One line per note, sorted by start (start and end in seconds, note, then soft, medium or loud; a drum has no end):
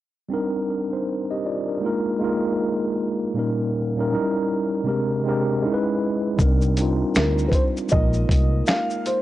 0.29 0.80 G3 medium
0.29 0.80 C4 medium
0.29 0.69 D4 medium
0.29 0.70 D#4 medium
0.34 0.69 A#4 medium
0.70 0.92 D4 soft
0.70 0.91 A#4 soft
0.93 1.29 D#4 medium
0.93 1.29 C5 medium
1.31 1.45 G4 medium
1.31 1.45 D#5 medium
1.46 1.68 F4 soft
1.46 1.67 D5 medium
1.68 2.04 D4 soft
1.68 1.85 A#4 medium
1.81 2.15 G#3 medium
1.81 2.16 A#3 medium
1.81 2.16 D#4 medium
1.81 2.17 F4 medium
1.86 2.18 A#4 medium
2.19 3.19 G#3 medium
2.19 3.20 A#3 medium
2.19 3.21 D#4 medium
2.19 3.21 F4 medium
2.24 3.22 A#4 medium
3.34 3.84 A#2 medium
3.34 3.85 G3 medium
3.34 3.85 A#3 medium
3.34 3.86 C#4 medium
3.34 3.86 D#4 medium
3.39 3.87 A#4 medium
3.96 4.11 A#2 medium
3.96 4.12 G3 medium
3.96 4.12 A#3 medium
3.96 4.10 C#4 medium
3.96 4.11 D#4 medium
4.00 4.13 A#4 medium
4.10 4.18 F#3 medium
4.10 4.77 C#4 medium
4.10 4.78 D#4 medium
4.14 4.80 G3 medium
4.14 4.79 E4 medium
4.14 4.79 A#4 medium
4.84 5.18 C3 medium
4.84 5.19 G#3 medium
4.84 5.19 C4 medium
4.84 5.20 D4 medium
4.84 5.20 G4 medium
4.89 5.21 A#4 medium
5.24 5.62 C3 medium
5.24 5.61 G#3 medium
5.24 5.63 C4 medium
5.24 5.64 D4 medium
5.28 5.65 G4 medium
5.28 5.65 A#4 medium
5.62 6.29 G#3 medium
5.62 6.29 C#4 medium
5.62 6.30 D#4 medium
5.62 6.31 E4 medium
5.67 5.73 A#4 medium
5.74 6.35 B4 loud
6.36 7.03 C2 medium
6.36 6.71 G3 medium
6.36 6.71 C4 medium
6.36 6.72 D4 medium
6.36 6.73 D#4 medium
6.36 kick medium
6.36 shaker medium
6.41 6.73 A#4 medium
6.61 shaker soft
6.76 7.91 G3 medium
6.76 7.91 C4 medium
6.76 7.92 D4 medium
6.76 7.91 D#4 medium
6.76 closed hi-hat medium
6.76 shaker soft
6.82 7.92 F4 medium
7.15 7.47 D2 medium
7.15 7.46 A#4 medium
7.15 finger snap medium
7.15 snare loud
7.15 shaker medium
7.38 shaker soft
7.48 7.53 B4 medium
7.48 kick medium
7.53 7.63 C5 medium
7.53 closed hi-hat medium
7.53 shaker soft
7.77 shaker medium
7.89 9.20 G#3 medium
7.89 9.21 A#3 medium
7.89 9.22 D#4 medium
7.89 8.69 D#5 loud
7.89 kick medium
7.89 shaker medium
7.93 8.24 A#1 loud
7.93 9.22 F4 medium
7.93 9.22 A#4 medium
8.13 shaker soft
8.29 8.61 C2 medium
8.29 kick loud
8.29 closed hi-hat medium
8.29 shaker soft
8.66 9.06 F5 medium
8.66 finger snap medium
8.66 snare loud
8.66 shaker medium
8.90 shaker soft
9.06 9.22 C5 medium
9.06 closed hi-hat medium
9.06 shaker soft